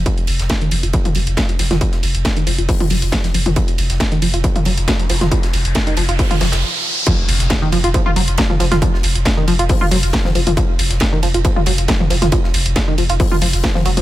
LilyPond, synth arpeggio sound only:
\new Staff \with { instrumentName = "Synth arpeggio sound" } { \clef bass \time 4/4 \key ees \dorian \tempo 4 = 137 r4 r16 ees16 f16 f'16 f16 f'16 ges16 r16 ges16 f16 f16 f'16 | f16 r4 ees16 f16 f'16 f16 f'16 ges16 r16 ges16 f16 f16 f'16 | f16 r4 ees16 f16 f'16 f16 f'16 ges16 r16 ges16 f16 f16 f'16 | f16 r4 ees16 f16 f'16 f16 f'16 f16 r4 r16 |
f16 r4 ees16 f16 f'16 f16 f'16 ges16 r16 ges16 f16 f16 f'16 | f16 r4 ees16 f16 f'16 f16 f'16 ges16 r16 ges16 f16 f16 f'16 | f16 r4 ees16 f16 f'16 f16 f'16 ges16 r16 ges16 f16 f16 f'16 | f16 r4 ees16 f16 f'16 f16 f'16 f16 r16 f16 f16 ges16 f16 | }